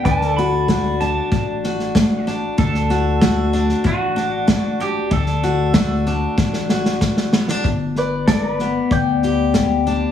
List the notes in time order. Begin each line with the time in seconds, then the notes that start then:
0.05 D2 D3 D4 B4 D5 A5, kick, snare
0.21 snare
0.30 A4
0.37 F#4 B5, snare
0.68 A3 F#4, kick, snare, hi-hat pedal
1.00 D4 A5, snare
1.32 A1 A2, kick, snare
1.64 F#4, snare
1.80 snare
1.95 A3, kick, snare, hi-hat pedal
2.27 D4, snare
2.58 D2 D3 D4 A4, kick, snare
2.74 snare
2.90 F#4, snare
3.21 A3 F#4, kick, snare, hi-hat pedal
3.53 D4, snare
3.69 snare
3.84 A1 A2 F#4, kick, snare
4.16 D4, snare
4.47 A3, kick, snare, hi-hat pedal
4.80 D4 G4, snare
5.11 D2 D3 D4 A4, kick, snare
5.26 snare
5.43 F#4, snare
5.74 A3 F#4, kick, snare, hi-hat pedal
6.06 D4, snare
6.37 A1 A2, kick, snare
6.54 snare
6.69 F#4, snare
6.86 snare
7.01 A3, kick, snare, hi-hat pedal
7.17 snare
7.33 B3, snare
7.48 D4, snare
7.64 G1 G2, kick, snare
7.96 B4 D5, snare
8.27 D3 A4 D5, kick, snare, hi-hat pedal
8.52 B4
8.59 B3, snare
8.90 D2 G2 D5 G5, kick, snare
9.22 G4, snare
9.54 D3, kick, snare, hi-hat pedal
9.86 D4, snare